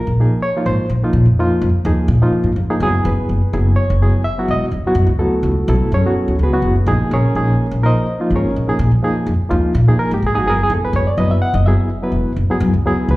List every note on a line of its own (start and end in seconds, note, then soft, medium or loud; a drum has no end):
0.00 0.39 A#4 medium
0.07 0.25 A#1 medium
0.20 0.41 F3 medium
0.20 0.41 A#3 medium
0.20 0.41 D#4 medium
0.20 0.42 G#4 medium
0.42 0.66 C#5 loud
0.57 0.85 F3 medium
0.57 0.85 A#3 medium
0.57 0.85 D#4 medium
0.57 0.85 F4 medium
0.66 0.76 G#1 medium
0.66 0.90 C5 medium
0.90 0.99 A#1 medium
1.02 1.25 F3 medium
1.02 1.25 A#3 medium
1.02 1.25 D#4 medium
1.02 1.25 F4 medium
1.02 muted upright bass stroke soft
1.13 1.23 A#2 medium
1.25 1.44 F2 medium
1.39 1.68 F3 medium
1.39 1.68 A#3 medium
1.39 1.68 D#4 medium
1.39 1.68 F4 loud
1.62 1.71 F2 medium
1.74 muted upright bass stroke soft
1.85 1.95 D#2 medium
1.85 2.08 F3 medium
1.85 2.08 A#3 medium
1.85 2.08 D#4 medium
1.85 2.08 G#4 medium
2.08 2.18 A#2 loud
2.22 2.51 F3 medium
2.22 2.51 A#3 medium
2.22 2.51 D#4 medium
2.22 2.51 F4 medium
2.32 muted upright bass stroke soft
2.44 2.53 G#2 medium
2.56 2.82 F2 medium
2.70 2.82 F3 medium
2.70 2.82 A#3 medium
2.70 2.82 D#4 medium
2.70 2.82 G#4 medium
2.80 2.99 F#1 medium
2.80 3.40 F#3 medium
2.80 3.40 B3 medium
2.80 3.40 E4 medium
2.80 3.40 G#4 loud
3.05 3.15 F#1 loud
3.05 3.74 B4 medium
3.18 muted upright bass stroke soft
3.29 3.39 F#1 medium
3.53 3.71 F#1 medium
3.53 3.83 F#3 medium
3.53 3.83 B3 medium
3.53 3.83 E4 medium
3.53 3.83 G#4 medium
3.76 4.21 C#5 medium
3.90 4.08 F#1 medium
4.02 4.23 F#3 medium
4.02 4.23 B3 medium
4.02 4.24 E4 medium
4.02 4.24 G#4 medium
4.24 4.48 E5 loud
4.38 4.67 F#3 medium
4.38 4.67 B3 medium
4.38 4.67 E4 medium
4.38 4.67 F#4 medium
4.48 4.58 E1 medium
4.48 4.65 D#5 loud
4.71 4.82 F#1 medium
4.84 5.08 F#3 medium
4.84 5.08 B3 medium
4.84 5.08 E4 medium
4.84 5.08 F#4 medium
4.84 muted upright bass stroke soft
4.95 5.05 F#2 loud
5.07 5.26 C#2 medium
5.19 5.50 F#3 medium
5.19 5.88 A3 medium
5.19 5.50 B3 medium
5.19 5.67 E4 medium
5.19 5.88 F#4 medium
5.19 5.68 A4 medium
5.43 5.53 C#2 medium
5.56 muted upright bass stroke soft
5.68 5.78 B1 loud
5.68 5.90 F#3 medium
5.68 5.91 B3 medium
5.68 5.91 E4 medium
5.68 5.91 A4 medium
5.92 6.01 F#2 loud
5.92 6.38 C#4 medium
5.92 6.38 G#4 medium
5.92 6.38 A4 medium
5.92 6.38 C#5 medium
6.06 6.34 F#3 medium
6.06 6.34 B3 medium
6.06 6.34 E4 medium
6.06 6.34 F#4 medium
6.16 muted upright bass stroke soft
6.28 6.37 D#2 medium
6.39 6.64 C#2 medium
6.43 6.52 B3 medium
6.43 6.52 F#4 medium
6.43 6.86 G#4 medium
6.43 6.86 B4 medium
6.53 6.75 F#3 medium
6.53 6.75 B3 medium
6.53 6.75 E4 medium
6.53 6.75 F#4 medium
6.62 6.81 F#1 medium
6.86 6.97 A#1 loud
6.86 7.17 F3 medium
6.86 7.17 A#3 medium
6.86 7.17 D#4 medium
6.86 7.13 G#4 medium
7.00 muted upright bass stroke soft
7.11 7.21 A#1 medium
7.11 7.81 C#4 medium
7.11 7.35 G#4 medium
7.11 7.81 A#4 medium
7.11 7.80 C#5 medium
7.35 7.53 A#1 medium
7.35 7.65 F3 medium
7.35 7.65 A#3 medium
7.35 7.65 D#4 medium
7.35 7.65 G#4 medium
7.71 7.90 A#1 medium
7.83 8.05 F3 medium
7.83 8.05 A#3 medium
7.83 8.05 D#4 medium
7.83 8.05 A#4 medium
7.83 8.29 C5 medium
7.83 8.29 D#5 medium
8.20 8.49 F3 medium
8.20 8.49 A#3 medium
8.20 8.49 D#4 medium
8.20 8.49 F4 medium
8.30 8.40 G#1 medium
8.36 8.78 C#4 medium
8.36 8.68 G#4 medium
8.36 8.78 A#4 medium
8.36 8.78 C#5 medium
8.56 8.65 A#1 medium
8.68 8.90 F3 medium
8.68 8.90 A#3 medium
8.68 8.90 D#4 medium
8.68 8.90 G#4 medium
8.68 muted upright bass stroke soft
8.79 8.89 A#2 loud
8.91 9.10 F2 medium
9.03 9.32 F3 medium
9.03 9.33 A#3 medium
9.03 9.33 D#4 medium
9.03 9.33 G#4 loud
9.27 9.36 F2 medium
9.40 muted upright bass stroke soft
9.49 9.60 D#2 medium
9.49 9.72 F3 medium
9.49 9.72 A#3 medium
9.49 9.72 D#4 medium
9.49 9.73 F4 medium
9.75 9.84 A#2 loud
9.88 10.16 F3 medium
9.88 10.16 A#3 medium
9.88 10.16 D#4 medium
9.88 10.17 G#4 medium
9.98 10.11 A#4 loud
9.98 muted upright bass stroke soft
10.11 10.20 G#2 medium
10.11 10.24 G4 medium
10.22 10.47 G#1 medium
10.27 10.34 G#4 loud
10.34 10.46 F3 medium
10.34 10.46 A#3 medium
10.34 10.46 D#4 medium
10.34 10.46 G#4 medium
10.38 10.48 F#4 medium
10.46 10.64 F#1 medium
10.46 11.04 F#3 medium
10.46 11.04 B3 medium
10.46 11.05 E4 medium
10.46 10.62 G#4 medium
10.46 10.61 A#4 medium
10.63 10.72 G#4 medium
10.70 10.79 F#1 loud
10.82 10.95 B4 medium
10.82 muted upright bass stroke soft
10.93 11.03 F#1 medium
10.93 11.08 C#5 loud
11.07 11.18 D5 medium
11.17 11.36 F#1 medium
11.17 11.48 F#3 medium
11.17 11.48 B3 medium
11.17 11.48 E4 medium
11.17 11.48 B4 medium
11.17 11.30 D#5 medium
11.31 11.42 E5 medium
11.42 11.54 F#5 loud
11.54 11.72 F#1 loud
11.54 11.66 D#5 medium
11.66 11.88 F#3 medium
11.66 11.88 B3 medium
11.66 11.89 E4 medium
11.66 11.89 G#4 medium
11.66 12.10 E5 medium
12.02 12.31 F#3 medium
12.02 12.32 B3 medium
12.02 12.32 E4 medium
12.02 12.32 B4 medium
12.12 12.22 E1 medium
12.36 12.46 F#1 medium
12.49 12.72 F#3 medium
12.49 12.72 B3 medium
12.49 12.72 E4 medium
12.49 12.72 G#4 loud
12.49 muted upright bass stroke soft
12.60 12.70 F#2 loud
12.74 12.92 C#2 medium
12.86 13.15 F#3 medium
12.86 13.15 B3 medium
12.86 13.15 E4 medium
12.86 13.15 G#4 loud
13.08 13.17 C#2 medium
13.08 13.17 B4 medium